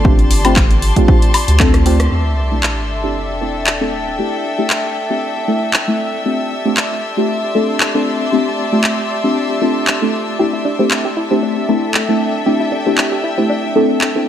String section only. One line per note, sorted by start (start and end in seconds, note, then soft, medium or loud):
0.00 3.19 G4 medium
0.00 3.76 D5 medium
0.00 3.72 A5 medium
0.00 3.57 C6 medium
2.12 7.42 D4 medium
2.26 7.58 A4 medium
2.60 7.43 E5 medium
3.21 7.16 G5 medium
6.25 11.86 G4 medium
6.52 11.75 D5 medium
6.71 11.79 C6 medium
6.79 11.58 A5 medium
10.39 14.29 D4 medium
10.52 14.29 A4 medium
11.19 14.29 E5 medium
11.50 14.29 G5 medium